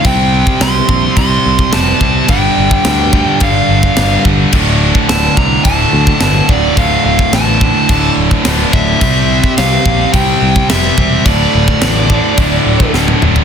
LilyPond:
<<
  \new Staff \with { instrumentName = "Lead electric guitar" } { \time 4/4 \key c \mixolydian \tempo 4 = 107 g''4 c'''4 c'''4 a''4 | g''2 f''4. r8 | r4 a''8 bes''8 a''4 a''8 d''8 | f''8 f''8 a''4. r4 e''8~ |
e''4 f''4 g''4 e''4 | d''2. r4 | }
  \new Staff \with { instrumentName = "Distorted electric guitar" } { \clef bass \time 4/4 \key c \mixolydian <c g c'>4. <c g c'>4. <c g c'>4 | <g, d g>4. <g, d g>4. <g, d g>4 | <d, a, d>4. <d, a, d>4. <d, a, d>4 | <d, a, d>4. <d, a, d>4. <d, a, d>4 |
<c g c'>4. <c g c'>4. <c g c'>4 | <d, a, d>4. <d, a, d>4. <d, a, d>4 | }
  \new Staff \with { instrumentName = "Distorted electric guitar" } { \clef bass \time 4/4 \key c \mixolydian <c g c'>2 <c g c'>2 | <g, d g>2 <g, d g>2 | <d, a, d>2 <d, a, d>2 | <d, a, d>2 <d, a, d>2 |
<c g c'>2 <c g c'>2 | <d, a, d>2 <d, a, d>2 | }
  \new Staff \with { instrumentName = "Distorted electric guitar" } { \clef bass \time 4/4 \key c \mixolydian <c g c'>4 <c g c'>8 <c g c'>8 <c g c'>4 <c g c'>8 <c g c'>8 | <g, d g>4 <g, d g>8 <g, d g>8 <g, d g>4 <g, d g>8 <g, d g>8 | <d, a, d>4 <d, a, d>8 <d, a, d>8 <d, a, d>4 <d, a, d>8 <d, a, d>8 | <d, a, d>4 <d, a, d>8 <d, a, d>8 <d, a, d>4 <d, a, d>8 <d, a, d>8 |
<c g c'>4 <c g c'>8 <c g c'>8 <c g c'>4 <c g c'>8 <c g c'>8 | <d, a, d>4 <d, a, d>8 <d, a, d>8 <d, a, d>4 <d, a, d>8 <d, a, d>8 | }
  \new Staff \with { instrumentName = "Picked electric bass" } { \clef bass \time 4/4 \key c \mixolydian c,4 c,8 bes,,8 c,8 c,8 f,,8 c,8 | g,,8 g,,8 d,4 g,,8 g,,8 g,,8 g,,8 | d,,4 d,,8 c,8 d,,8 d,8 g,,8 d,,8 | d,,8 d,,8 a,,4 d,,8 d,,8 d,,8 d,,8 |
c,4 c,8 bes,,8 c,8 c,8 f,,8 e,,8 | d,,8 d,,8 a,,4 d,,8 d,,8 d,,8 d,,8 | }
  \new DrumStaff \with { instrumentName = "Drums" } \drummode { \time 4/4 <cymc bd>8. bd16 <cymc sn>8 bd8 <cymc bd>8. bd16 <cymc sn>8 bd8 | <cymc bd>8. bd16 <cymc sn>8 bd8 <cymc bd>8. bd16 <cymc sn>8 bd8 | <cymc bd>8. bd16 <cymc sn>8 bd8 <cymc bd>8. bd16 <cymc sn>8 bd8 | <cymc bd>8. bd16 <cymc sn>8 bd8 <cymc bd>8. bd16 <cymc sn>8 bd8 |
<cymc bd>8. bd16 <cymc sn>8 bd8 <cymc bd>8. bd16 <cymc sn>8 bd8 | <cymc bd>8. bd16 <cymc sn>8 bd8 <cymc bd>8. bd16 sn16 tommh16 toml16 tomfh16 | }
>>